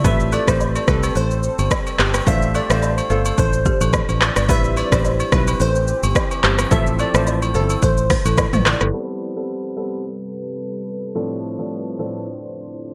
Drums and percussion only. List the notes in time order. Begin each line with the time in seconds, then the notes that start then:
0.04 kick, shaker
0.20 shaker
0.32 high agogo, shaker
0.48 kick, cross-stick, shaker
0.60 low woodblock, shaker
0.75 high agogo, shaker
0.88 kick, cross-stick, shaker
1.03 high agogo, shaker
1.15 shaker
1.31 shaker
1.43 shaker
1.59 high agogo, shaker
1.71 kick, cross-stick, low woodblock, shaker
1.87 high agogo, shaker
1.99 cross-stick, clap, shaker
2.14 cross-stick, high agogo, shaker
2.27 kick, shaker
2.42 shaker
2.54 high agogo, shaker
2.70 cross-stick, shaker
2.83 low woodblock, shaker
2.98 high agogo, shaker
3.10 shaker
3.25 high agogo, shaker
3.38 kick, shaker
3.53 shaker
3.65 kick, shaker
3.81 high agogo, shaker
3.93 kick, cross-stick, low woodblock, shaker
4.09 high agogo, shaker
4.21 cross-stick, clap, shaker
4.36 cross-stick, high agogo, shaker
4.49 kick, shaker
4.64 shaker
4.77 high agogo, shaker
4.92 kick, cross-stick, shaker
5.05 low woodblock, shaker
5.20 high agogo, shaker
5.32 kick, cross-stick, shaker
5.47 high agogo, shaker
5.60 shaker
5.75 shaker
5.88 shaker
6.03 high agogo, shaker
6.15 kick, cross-stick, low woodblock, shaker
6.31 high agogo, shaker
6.44 cross-stick, clap, shaker
6.58 cross-stick, high agogo, shaker
6.71 kick, shaker
6.87 shaker
6.99 high agogo, shaker
7.14 cross-stick, shaker
7.27 low woodblock, shaker
7.42 high agogo, shaker
7.54 shaker
7.70 high agogo, shaker
7.82 kick, shaker
7.98 shaker
8.10 kick, cross-stick, open hi-hat, shaker
8.26 high agogo, shaker
8.38 kick, cross-stick, low woodblock, shaker
8.53 mid tom, high agogo, shaker
8.66 cross-stick, clap, shaker
8.81 cross-stick, high agogo, shaker